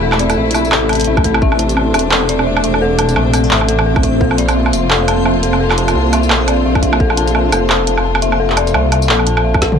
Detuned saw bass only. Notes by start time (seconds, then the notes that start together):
Already playing: E1
0.37 A#1
0.72 A1
1.07 A1
1.42 A1
1.94 E1
2.64 E1
3.16 A#1
3.51 A1
4.21 A#1
4.73 F1
5.43 F1
5.95 C2
6.30 A#1
6.65 A#1
7.00 A#1
7.52 F1
8.22 F1
8.75 C2
9.09 A#1